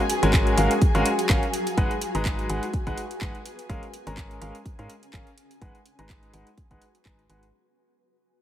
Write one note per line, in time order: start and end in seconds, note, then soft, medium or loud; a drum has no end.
0.00 3.70 F#4 medium
0.00 7.55 G#4 medium
0.00 0.53 G#5 medium
0.00 7.55 G#5 medium
0.10 closed hi-hat medium
0.23 0.55 G#1 medium
0.23 0.55 G#3 medium
0.23 0.55 C#4 medium
0.23 0.55 F#4 medium
0.23 0.55 A#4 medium
0.23 0.55 G#5 medium
0.23 closed hi-hat soft
0.31 2.41 F5 medium
0.31 kick loud
0.31 clap loud
0.31 closed hi-hat soft
0.47 2.41 A#5 medium
0.47 closed hi-hat soft
0.57 0.68 G#1 medium
0.57 0.71 G#3 medium
0.57 0.71 C#4 medium
0.57 0.71 F#4 medium
0.57 0.71 A#4 medium
0.57 0.71 F5 medium
0.57 closed hi-hat medium
0.71 closed hi-hat soft
0.82 kick loud
0.82 closed hi-hat soft
0.95 1.03 G#1 medium
0.95 1.05 G#3 medium
0.95 1.05 C#4 medium
0.95 1.05 F#4 medium
0.95 1.05 A#4 medium
0.95 1.05 F5 medium
0.95 closed hi-hat soft
1.06 closed hi-hat medium
1.19 closed hi-hat soft
1.29 1.40 G#1 medium
1.29 1.43 C#4 medium
1.29 1.43 F#4 medium
1.29 1.43 A#4 medium
1.29 1.43 F5 medium
1.29 kick loud
1.29 clap loud
1.29 closed hi-hat soft
1.43 closed hi-hat soft
1.54 closed hi-hat medium
1.67 closed hi-hat soft
1.78 1.88 G#1 medium
1.78 1.91 G#3 medium
1.78 1.91 D#4 medium
1.78 1.91 G#4 medium
1.78 1.91 B4 medium
1.78 3.70 B4 medium
1.78 1.91 F#5 loud
1.78 kick loud
1.78 closed hi-hat soft
1.91 closed hi-hat soft
1.98 7.54 G#5 medium
1.98 closed hi-hat medium
2.15 2.47 G#1 medium
2.15 2.47 G#3 medium
2.15 2.47 D#4 medium
2.15 2.47 G#4 medium
2.15 2.47 B4 medium
2.15 2.47 A#5 medium
2.15 closed hi-hat soft
2.25 kick loud
2.25 clap loud
2.25 closed hi-hat soft
2.39 closed hi-hat soft
2.50 2.60 G#1 medium
2.50 2.63 G#3 medium
2.50 2.63 D#4 medium
2.50 2.63 G#4 medium
2.50 2.63 B4 medium
2.50 2.63 F#5 medium
2.50 closed hi-hat medium
2.63 closed hi-hat soft
2.74 kick loud
2.74 closed hi-hat soft
2.87 2.95 G#1 medium
2.87 2.97 G#3 medium
2.87 2.97 D#4 medium
2.87 2.97 G#4 medium
2.87 2.97 B4 medium
2.87 2.97 F#5 loud
2.87 kick medium
2.87 closed hi-hat soft
2.98 closed hi-hat medium
3.11 closed hi-hat medium
3.21 3.32 G#1 medium
3.21 3.35 G#3 medium
3.21 3.35 D#4 medium
3.21 3.35 G#4 medium
3.21 3.35 B4 medium
3.21 3.35 F#5 medium
3.21 kick loud
3.21 clap loud
3.21 closed hi-hat soft
3.35 closed hi-hat soft
3.46 closed hi-hat medium
3.59 closed hi-hat soft
3.69 3.80 G#1 medium
3.69 3.83 G#3 medium
3.69 3.83 C#4 medium
3.69 6.25 C#4 medium
3.69 3.83 G#4 medium
3.69 3.83 A#4 medium
3.69 3.83 F5 loud
3.69 kick loud
3.69 closed hi-hat soft
3.83 closed hi-hat soft
3.94 closed hi-hat medium
4.07 4.39 G#1 medium
4.07 4.39 G#3 medium
4.07 4.39 C#4 medium
4.07 4.39 G#4 medium
4.07 4.39 A#4 medium
4.07 4.39 A#5 medium
4.07 closed hi-hat soft
4.17 kick loud
4.17 clap loud
4.17 closed hi-hat soft
4.31 closed hi-hat soft
4.41 4.52 G#1 medium
4.41 4.55 G#3 medium
4.41 4.55 C#4 medium
4.41 4.55 G#4 medium
4.41 4.55 A#4 medium
4.41 4.55 F5 medium
4.41 closed hi-hat medium
4.55 closed hi-hat soft
4.66 kick loud
4.66 closed hi-hat soft
4.79 4.87 G#2 medium
4.79 4.89 G#3 medium
4.79 4.89 C#4 medium
4.79 4.89 G#4 medium
4.79 4.89 A#4 medium
4.79 4.89 F5 medium
4.79 closed hi-hat soft
4.90 closed hi-hat medium
5.03 closed hi-hat soft
5.13 5.24 G#1 medium
5.13 5.27 C#4 medium
5.13 5.27 G#4 medium
5.13 5.27 A#4 medium
5.13 5.27 F5 medium
5.13 kick loud
5.13 clap loud
5.13 closed hi-hat medium
5.27 closed hi-hat soft
5.38 7.54 F#4 medium
5.38 closed hi-hat medium
5.51 closed hi-hat soft
5.62 5.72 G#1 medium
5.62 5.75 G#3 medium
5.62 5.75 D#4 medium
5.62 5.75 G#4 medium
5.62 5.75 B4 medium
5.62 5.75 F#5 medium
5.62 kick loud
5.62 closed hi-hat soft
5.74 7.54 B4 medium
5.74 closed hi-hat soft
5.86 closed hi-hat medium
5.99 6.31 G#1 medium
5.99 6.31 G#3 medium
5.99 6.31 D#4 medium
5.99 6.31 G#4 medium
5.99 6.31 B4 medium
5.99 6.31 A#5 medium
5.99 closed hi-hat medium
6.09 kick loud
6.09 clap loud
6.09 closed hi-hat soft
6.23 closed hi-hat soft
6.34 6.44 G#1 medium
6.34 6.47 G#3 medium
6.34 6.47 D#4 medium
6.34 6.47 G#4 medium
6.34 6.47 B4 medium
6.34 6.47 F#5 medium
6.34 closed hi-hat medium
6.47 closed hi-hat medium
6.58 kick loud
6.58 closed hi-hat medium
6.71 6.79 G#1 medium
6.71 6.81 G#3 medium
6.71 6.81 D#4 medium
6.71 6.81 G#4 medium
6.71 6.81 B4 medium
6.71 6.81 F#5 loud
6.71 kick medium
6.71 closed hi-hat soft
6.82 closed hi-hat medium
6.95 closed hi-hat medium
7.05 7.27 G#1 medium
7.05 7.19 G#3 medium
7.05 7.19 D#4 medium
7.05 7.19 G#4 medium
7.05 7.19 B4 medium
7.05 7.19 A#5 medium
7.05 kick loud
7.05 clap loud
7.05 closed hi-hat soft
7.19 closed hi-hat soft
7.30 7.51 G#1 medium
7.30 7.43 G#3 medium
7.30 7.43 D#4 medium
7.30 7.43 G#4 medium
7.30 7.43 B4 medium
7.30 7.43 F#5 medium
7.30 closed hi-hat medium
7.43 closed hi-hat soft